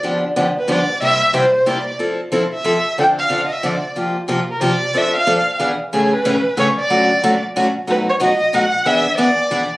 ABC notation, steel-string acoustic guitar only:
X:1
M:3/4
L:1/8
Q:"Swing" 1/4=184
K:F
V:1 name="Steel-string acoustic guitar"
[G,,D,F,=B,DG] z [G,,D,F,B,DG] z [G,,D,F,B,DG] z | [C,G,B,EG] z [C,G,B,EG] z [C,G,B,EG] z | [F,CEA] z [F,CEA] z [F,CEA] z | [D,F,CDA] z [D,F,CDA] z [D,F,CDA] z |
[C,F,B,FG] z [C,F,B,FG] z [C,F,B,FG] z | [F,CDA] z [F,CDA] z [E,=B,D^G] z | [K:A] [A,,C,E,A,CG] z [A,,C,E,A,CG] z [A,,C,E,A,CG] z | [D,F,A,CF] z [D,F,A,CF] z [D,F,A,CF] z |
[B,,F,A,^DF] z [B,,F,A,DF] z [B,,F,A,DF] z | [E,B,DG] z [E,B,DG] z [E,B,DG] z |]